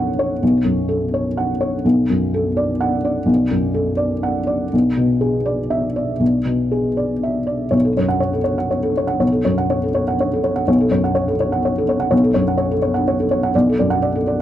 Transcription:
Already playing: B1 F#2 A4 C#5 F#5
0.19 C#5
0.43 B1
0.64 F#2
0.89 A4
1.14 C#5
1.37 F#5
1.61 C#5
1.85 B1
2.10 F#2
2.34 A4
2.57 D5
2.81 F#5
3.05 D5
3.26 B1
3.51 F#2
3.74 A4
3.97 D5
4.23 F#5
4.47 D5
4.73 B1
4.97 B2
5.21 G#4
5.46 D5
5.70 E5
5.96 D5
6.20 B1
6.45 B2
6.71 G#4
6.97 D5
7.23 E5
7.47 D5
7.71 B1 C#5
7.85 A4
7.97 F#2 C#5
8.08 F#5
8.20 C#5
8.33 A4
8.44 C#5
8.58 F#5
8.71 C#5
8.83 A4
8.97 C#5
9.07 F#5
9.19 B1 C#5
9.32 A4
9.45 F#2 C#5
9.58 F#5
9.70 C#5
9.83 A4
9.95 C#5
10.08 F#5
10.20 C#5
10.33 A4
10.44 C#5
10.56 F#5
10.68 B1 C#5
10.81 A4
10.91 F#2 C#5
11.04 F#5
11.15 C#5
11.28 A4
11.40 C#5
11.52 F#5
11.65 C#5
11.78 A4
11.89 C#5
12.00 F#5
12.11 B1 C#5
12.24 A4
12.34 F#2 C#5
12.48 F#5
12.57 C#5
12.71 A4
12.82 C#5
12.94 F#5
13.08 C#5
13.20 A4
13.31 C#5
13.43 F#5
13.55 B1 D5
13.69 A4
13.79 F#2 D5
13.90 F#5
14.02 D5
14.15 A4
14.27 D5

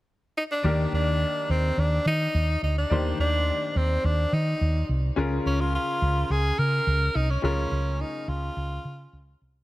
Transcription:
0.38 D#4
0.52 D4
0.63 D#2 D#3 A#3 G4 A#4 D5
0.92 D#2 D4
1.49 D#2 C4
1.77 D#2 D4
2.05 D#3 D#4
2.34 D#2
2.62 D2 D#4
2.78 D4
2.90 D#2 D#3 A#3 G4 C5 D5
3.19 D#2 D4
3.75 D#2 C4
4.04 D#2 D4
4.32 D#3 D#4
4.61 D#2
4.89 C2
5.16 C#2 C#3 C#4 F4 G#4 A#4
5.46 C#2 C#4
5.61 F4
5.75 F4
6.02 C#2
6.30 C#2 G#4
6.58 C#3 A#4
6.87 C#2
7.15 C2 D#4
7.30 C#4
7.42 C#2 C#3 C#4 F4 G#4 A#4
7.71 C#2
8.01 D#4
8.28 C#2 F4
8.56 C#2
8.85 C#3
9.13 C#2
9.41 C2

